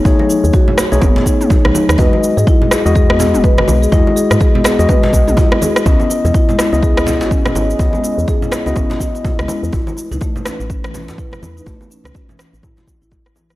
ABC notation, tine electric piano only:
X:1
M:4/4
L:1/16
Q:"Swing 16ths" 1/4=124
K:C#m
V:1 name="Tine electric piano"
[A,DGc]6- [A,DGc] [A,DGc]8- [A,DGc] | [G,Fd]6- [G,Fd] [G,Fd]8- [G,Fd] | [G,Fd]6- [G,Fd] [G,Fd]8- [G,Fd] | [B,Ed]6- [B,Ed] [B,Ed]8- [B,Ed] |
[B,Ed]6- [B,Ed] [B,Ed]8- [B,Ed] | z16 | z16 |]